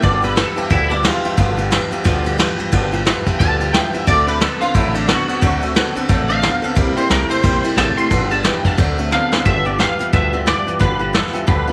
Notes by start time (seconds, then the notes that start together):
0.02 G1 G2 D3 F3 B3 F4 G4 D5, kick, ride
0.22 G2 D3 F3 B3 F4 G4 B4, ride
0.36 G2 E3 F3 B3 F4 G4 A4, snare, ride
0.56 G2 E3 F3 B3 F4 G4, muted upright bass stroke, ride
0.70 D2 G2 D3 F3 B3 E4 F4 G4, kick, ride
0.89 G2 D3 F3 B3 D4 F4 G4, ride
1.03 G2 E3 F3 B3 F4 G4, snare, ride
1.24 G2 E3 F3 B3 F4 G4, muted upright bass stroke, ride
1.37 G1 G2 D3 F3 B3 F4 G4, kick, ride
1.57 G2 D3 F3 B3 F4 G4, ride
1.70 G2 E3 F3 B3 F4 G4, snare, ride
1.91 G2 E3 F3 B3 F4 G4, muted upright bass stroke, ride
2.04 D2 G2 D3 F3 B3 F4 G4, kick, ride
2.24 G2 D3 F3 B3 F4 G4, ride
2.38 G2 E3 F3 B3 F4 G4, snare, ride
2.58 G2 E3 F3 B3 F4 G4, muted upright bass stroke, ride
2.72 G1 G2 D3 F3 B3 F4 G4, kick, ride
2.92 G2 D3 F3 B3 F4 G4, ride
3.05 G2 E3 F3 B3 F4 G4, snare, ride
3.26 G2 E3 F3 B3 F4 G4, muted upright bass stroke, kick, ride
3.39 D2 G2 D3 F3 B3 F4 G4 A5, kick, ride
3.60 G2 D3 F3 B3 F4 G4, ride
3.73 G2 E3 F3 B3 F4 G4 G5, snare, ride
3.93 G2 E3 F3 B3 F4 G4 E5, muted upright bass stroke, ride
4.07 D2 D3 F#3 A3 C4 D4 A4 D5, kick, ride
4.27 D3 A3 C4 D4 A4 B4, ride
4.40 D3 F#3 B3 C4 D4 A4, snare, ride
4.61 D3 B3 C4 D4 F4 A4, muted upright bass stroke, ride
4.74 A1 D3 F#3 A3 C4 D4 E4 A4, kick, ride
4.94 D3 A3 C4 D4 A4, ride
5.08 D3 F#3 B3 C4 D4 F#4 A4, snare, ride
5.28 D3 B3 C4 D4 A4, muted upright bass stroke, ride
5.41 D2 D3 F#3 A3 C4 D4 A4, kick, ride
5.61 D3 A3 C4 D4 A4, ride
5.75 D3 F#3 B3 C4 D4 A4, snare, ride
5.95 D3 B3 C4 D4 A4, muted upright bass stroke, ride
6.08 A1 D3 F#3 A3 C4 D4 A4, kick, ride
6.28 D3 A3 C4 D4 A4 F5, ride
6.42 D3 F#3 B3 C4 D4 A4, snare, ride
6.62 D3 B3 C4 D4 A4, muted upright bass stroke, ride
6.75 C2 C3 G3 A#3 E4 G4, kick, ride
6.96 C3 G3 A#3 E4 G4 C5, muted upright bass stroke, ride
7.09 C2 C3 G3 A3 A#3 E4 G4 A#4, snare, ride
7.29 C3 A3 A#3 E4 G4 C5, muted upright bass stroke, ride
7.42 A#1 C3 G3 A#3 E4 G4, kick, ride
7.63 C3 G3 A#3 E4 G4, muted upright bass stroke, ride
7.76 A1 C3 G3 A3 A#3 E4 G4 A5, snare, ride
7.97 C3 A3 A#3 E4 G4 C6, muted upright bass stroke, ride
8.10 G1 G2 D3 F3 B3 D4 G4, kick, ride
8.30 G2 D3 F3 B3 D4 G4 A5, ride
8.43 G2 E3 F3 B3 D4 G4 G5, snare, ride
8.64 G2 E3 F3 B3 D4 G4 A5, kick, ride
8.78 D2 D3 F#3 A3 C4 D4 A4, kick, ride
8.98 D3 A3 C4 D4 A4, ride
9.11 D3 F#3 B3 C4 D4 A4 F5, snare
9.32 D3 B3 C4 D4 A4, muted upright bass stroke, snare
9.45 G1 G2 D3 F3 B3 F4 G4 E5, kick, closed hi-hat
9.65 G2 D3 F3 B3 F4 G4 D5
9.78 G2 E3 F3 B3 F4 G4 F5, snare, closed hi-hat
9.99 G2 E3 F3 B3 F4 G4, muted upright bass stroke, closed hi-hat
10.13 D2 G2 D3 F3 B3 F4 G4 E5, kick, closed hi-hat
10.33 G2 D3 F3 B3 F4 G4
10.46 G2 E3 F3 B3 F4 G4 D5, snare, closed hi-hat
10.66 G2 E3 F3 B3 F4 G4, muted upright bass stroke, closed hi-hat
10.79 G1 G2 D3 F3 B3 F4 G4 B4, kick, closed hi-hat
10.99 G2 D3 F3 B3 F4 G4
11.13 G2 E3 F3 B3 F4 G4 A4, snare, closed hi-hat
11.33 G2 E3 F3 B3 F4 G4, muted upright bass stroke, closed hi-hat
11.47 D2 G2 D3 F3 B3 F4 G4 B4, kick, closed hi-hat
11.68 G2 D3 F3 B3 F4 G4